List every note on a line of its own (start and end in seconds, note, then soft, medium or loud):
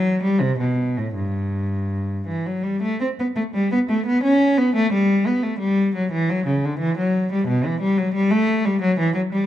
0.00 0.22 F#3 medium
0.23 0.40 G3 medium
0.41 0.59 C3 medium
0.59 0.95 B2 medium
0.98 1.15 A2 medium
1.15 2.25 G2 medium
2.27 2.44 E3 medium
2.46 2.64 F#3 medium
2.63 2.82 G3 medium
2.83 3.01 A3 medium
3.01 3.08 C4 medium
3.20 3.27 B3 medium
3.36 3.43 A3 medium
3.55 3.72 G3 medium
3.72 3.79 B3 medium
3.90 4.07 A3 medium
4.06 4.24 B3 medium
4.24 4.58 C#4 medium
4.58 4.75 B3 medium
4.75 4.92 A3 medium
4.93 5.26 G3 medium
5.27 5.44 B3 medium
5.43 5.60 A3 medium
5.59 5.93 G3 medium
5.95 6.11 F#3 medium
6.12 6.28 E3 medium
6.30 6.46 F#3 medium
6.46 6.63 C#3 medium
6.65 6.81 D3 medium
6.79 6.96 E3 medium
6.98 7.30 F#3 medium
7.32 7.48 G3 medium
7.48 7.64 B2 medium
7.65 7.82 E3 medium
7.81 7.97 G3 medium
7.97 8.14 F#3 medium
8.14 8.31 G3 medium
8.31 8.65 A3 medium
8.65 8.81 G3 medium
8.82 8.97 F#3 medium
9.00 9.15 E3 medium
9.14 9.21 F#3 medium
9.33 9.46 G3 medium